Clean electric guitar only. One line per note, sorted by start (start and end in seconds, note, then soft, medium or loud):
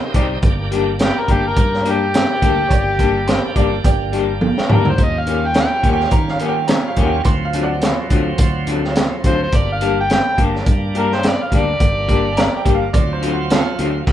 0.14 0.33 C3 medium
0.14 0.33 C4 loud
0.14 0.33 D#4 loud
0.14 0.33 G4 loud
0.71 0.90 G3 medium
0.71 0.90 A#3 medium
0.71 0.90 D4 medium
0.71 0.90 G4 loud
1.29 1.47 G3 medium
1.29 1.47 A#3 medium
1.29 1.47 D4 medium
1.29 1.47 G4 medium
1.85 2.04 G3 medium
1.85 2.04 A#3 medium
1.85 2.04 D4 medium
1.85 2.04 G4 medium
2.42 2.60 G3 medium
2.42 2.60 A#3 medium
2.42 2.61 D4 medium
2.42 2.61 G4 medium
2.99 3.17 G3 medium
2.99 3.17 A#3 medium
2.99 3.18 D4 medium
2.99 3.18 G4 loud
3.56 3.74 G3 medium
3.56 3.74 A#3 medium
3.56 3.75 D4 medium
3.56 3.75 G4 medium
4.13 4.31 G3 medium
4.13 4.31 A#3 medium
4.13 4.32 D4 medium
4.13 4.32 G4 medium
4.70 4.88 G3 medium
4.70 4.88 A#3 medium
4.70 4.88 D4 medium
4.70 4.89 G4 medium
5.27 5.45 D#3 medium
5.27 5.45 A#3 medium
5.27 5.45 C#4 medium
5.27 5.46 G4 medium
5.84 6.02 D#3 medium
5.84 6.02 A#3 medium
5.84 6.02 C#4 medium
5.84 6.02 G4 medium
6.41 6.59 D#3 medium
6.41 6.59 A#3 medium
6.41 6.59 C#4 medium
6.41 6.59 G4 medium
6.97 7.15 D#3 loud
6.97 7.16 A#3 medium
6.97 7.16 C#4 loud
6.97 7.16 G4 medium
7.54 7.72 D3 medium
7.54 7.72 F#3 medium
7.54 7.73 C4 medium
7.54 7.73 F4 medium
8.11 8.29 D3 medium
8.11 8.29 F#3 medium
8.11 8.30 C4 medium
8.11 8.30 F4 loud
8.67 8.86 D3 medium
8.67 8.86 F#3 medium
8.67 8.86 C4 medium
8.67 8.86 F4 loud
9.24 9.43 D3 medium
9.24 9.43 F#3 medium
9.24 9.43 C4 loud
9.24 9.43 F4 medium
9.81 9.99 G3 medium
9.81 10.00 A#3 medium
9.81 10.00 D4 medium
9.81 10.00 G4 medium
10.38 10.56 G3 medium
10.38 10.56 A#3 medium
10.38 10.57 D4 medium
10.38 10.57 G4 medium
10.95 11.13 G3 medium
10.95 11.13 A#3 medium
10.95 11.13 D4 medium
10.95 11.14 G4 medium
11.52 11.70 G3 medium
11.52 11.70 A#3 medium
11.52 11.71 D4 medium
11.52 11.71 G4 medium
12.08 12.26 G3 medium
12.08 12.27 A#3 medium
12.08 12.27 D4 medium
12.08 12.27 G4 medium
12.65 12.83 G3 medium
12.65 12.84 A#3 medium
12.65 12.84 D4 medium
12.65 12.84 G4 medium
13.22 13.40 D3 medium
13.22 13.40 F#3 medium
13.22 13.41 C4 medium
13.22 13.41 F4 loud
13.79 13.97 D3 medium
13.79 13.97 F#3 medium
13.79 13.97 C4 medium
13.79 13.97 F4 loud